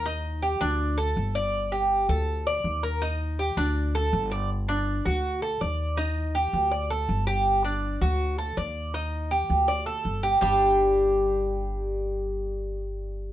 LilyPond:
<<
  \new Staff \with { instrumentName = "Cuban tres" } { \time 4/4 \key d \phrygian \tempo 4 = 162 ees'4 g'8 d'4 a'4 d''8~ | d''8 g'4 a'4 d''4 bes'8 | ees'4 g'8 d'4 a'4 d''8 | r8 d'4 fis'4 a'8 d''4 |
ees'4 g'4 d''8 a'4 g'8~ | g'8 d'4 fis'4 a'8 d''4 | ees'4 g'4 d''8 a'4 g'8 | <g d' g'>1~ |
<g d' g'>1 | }
  \new Staff \with { instrumentName = "Upright bass" } { \clef bass \time 4/4 \key d \phrygian ees,4. d,4. g,,4~ | g,,4. d,4. ees,4~ | ees,4. d,4. g,,4~ | g,,4. d,4. ees,4~ |
ees,4. d,4. g,,4~ | g,,4. d,4. ees,4~ | ees,4. d,4. g,,4 | g,,1~ |
g,,1 | }
>>